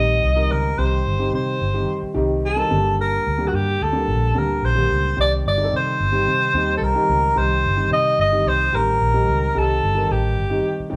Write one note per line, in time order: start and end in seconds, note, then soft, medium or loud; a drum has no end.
0.00 0.19 A#1 medium
0.00 0.28 D#3 medium
0.00 0.28 G3 medium
0.00 0.28 C4 medium
0.00 0.28 D#4 medium
0.00 0.28 G4 medium
0.00 0.53 D#5 loud
0.24 0.47 C2 loud
0.36 0.69 D#3 medium
0.36 0.69 G3 medium
0.36 0.69 C4 medium
0.36 0.69 D#4 medium
0.36 0.69 A#4 medium
0.51 0.74 C#2 medium
0.51 0.81 A#4 medium
0.78 1.02 C2 loud
0.78 1.11 D#3 medium
0.78 1.11 G3 medium
0.78 1.11 C4 medium
0.78 1.11 D#4 medium
0.78 1.11 G4 medium
0.78 1.34 C5 loud
1.06 1.29 G1 medium
1.19 1.63 D#3 medium
1.19 1.63 G3 medium
1.19 1.63 C4 medium
1.19 1.63 D#4 medium
1.19 1.63 G4 medium
1.34 1.57 C3 loud
1.34 2.13 C5 medium
1.61 1.84 G1 medium
1.74 2.07 D#3 medium
1.74 2.07 G3 medium
1.74 2.07 C4 medium
1.74 2.07 D#4 medium
1.74 2.07 G4 medium
2.03 muted fingered electric bass stroke soft
2.14 2.62 C2 medium
2.14 2.48 D#3 medium
2.14 2.48 G3 medium
2.14 2.48 C4 medium
2.14 2.48 D#4 medium
2.14 2.48 G4 loud
2.46 2.96 A4 medium
2.56 2.70 D#3 medium
2.56 2.69 G3 medium
2.56 2.70 C4 medium
2.56 2.70 D#4 medium
2.56 2.70 A#4 medium
2.70 3.17 G1 medium
2.70 3.26 D3 medium
2.70 3.26 G3 medium
2.70 3.25 A#3 medium
2.70 3.26 D4 medium
2.70 3.26 G4 medium
3.01 3.49 A#4 medium
3.27 3.49 D2 medium
3.38 3.82 D3 medium
3.38 3.82 G3 medium
3.38 3.82 A#3 medium
3.38 3.82 D4 medium
3.38 3.82 G4 medium
3.48 3.56 F#4 medium
3.53 3.76 G2 loud
3.53 3.85 G4 medium
3.81 4.10 D2 medium
3.81 4.40 A4 loud
3.93 4.26 D3 medium
3.93 4.26 G3 medium
3.93 4.26 A#3 medium
3.93 4.26 D4 medium
3.93 4.26 G4 medium
4.08 4.31 A#1 loud
4.35 4.59 D2 medium
4.35 4.68 D3 medium
4.35 4.68 G3 medium
4.35 4.68 A#3 medium
4.35 4.68 D4 medium
4.35 4.68 G4 medium
4.35 4.67 A#4 medium
4.62 4.86 A#1 medium
4.62 5.19 C5 loud
4.75 5.09 D3 medium
4.75 5.08 G3 medium
4.75 5.09 A#3 medium
4.75 5.09 D4 medium
4.75 5.09 G4 medium
4.91 5.14 C#2 medium
5.16 5.41 C2 loud
5.16 5.50 D#3 medium
5.16 5.50 G3 medium
5.16 5.50 C4 medium
5.16 5.50 D#4 medium
5.16 5.50 G4 medium
5.21 5.32 D5 loud
5.46 5.69 G1 medium
5.46 5.72 D5 loud
5.57 6.02 D#3 medium
5.57 6.02 G3 medium
5.57 6.02 C4 medium
5.57 6.02 D#4 medium
5.57 5.65 G#4 medium
5.64 6.05 A4 medium
5.73 5.96 C3 loud
5.73 6.73 C5 loud
6.00 6.23 G1 medium
6.12 6.46 D#3 medium
6.12 6.45 G3 medium
6.12 6.46 C4 medium
6.12 6.46 D#4 medium
6.12 6.46 G4 medium
6.27 6.50 C3 medium
6.54 6.77 D#2 medium
6.54 6.87 D#3 medium
6.54 6.87 G3 medium
6.54 6.87 C4 medium
6.54 6.87 D#4 medium
6.54 6.87 G4 loud
6.77 6.85 A4 medium
6.82 6.93 C2 medium
6.82 7.39 A#4 loud
6.95 7.28 D#3 medium
6.95 7.28 G3 medium
6.95 7.28 C4 medium
6.95 7.28 D#4 medium
6.95 7.28 G4 loud
7.09 7.32 C#2 medium
7.36 7.66 C2 loud
7.36 7.69 D#3 medium
7.36 7.69 G3 medium
7.36 7.69 C4 medium
7.36 7.69 D#4 medium
7.36 7.69 G4 medium
7.36 7.92 C5 loud
7.64 7.87 G1 medium
7.77 8.21 D#3 medium
7.77 8.21 G3 medium
7.77 8.21 C4 medium
7.77 8.21 D#4 medium
7.77 8.21 G4 medium
7.91 8.14 C3 loud
7.91 8.18 D#5 loud
8.19 8.42 G1 loud
8.19 8.49 D#5 loud
8.32 8.65 D#3 medium
8.32 8.65 G3 medium
8.32 8.65 C4 medium
8.32 8.65 D#4 medium
8.32 8.65 G4 medium
8.46 8.69 C2 loud
8.46 8.77 C5 loud
8.73 8.97 A1 medium
8.73 9.06 D#3 medium
8.73 9.06 G3 medium
8.73 9.06 C4 medium
8.73 9.06 D#4 medium
8.73 9.06 G4 medium
8.73 9.60 A#4 loud
9.01 9.24 A#1 medium
9.14 9.46 D#3 medium
9.14 9.47 G3 medium
9.14 9.47 C4 medium
9.14 9.47 D#4 medium
9.14 9.47 G4 medium
9.29 9.51 C#2 medium
9.55 9.79 C2 loud
9.55 9.88 D#3 medium
9.55 9.88 G3 medium
9.55 9.88 C4 medium
9.55 9.88 D#4 medium
9.55 9.88 G4 medium
9.55 10.14 A4 loud
9.83 10.06 G1 medium
9.95 10.39 D#3 medium
9.95 10.39 G3 medium
9.95 10.39 C4 medium
9.95 10.39 D#4 medium
9.95 10.39 A#4 medium
10.11 10.38 A1 loud
10.11 10.93 G4 medium
10.38 10.61 G1 loud
10.50 10.83 D#3 medium
10.50 10.83 G3 medium
10.50 10.83 C4 medium
10.50 10.83 D#4 medium
10.50 10.83 G4 medium
10.80 muted fingered electric bass stroke soft
10.90 10.96 C2 medium
10.90 10.96 D#3 medium
10.90 10.96 G3 medium
10.90 10.96 C4 medium
10.90 10.96 D#4 medium
10.90 10.96 G4 loud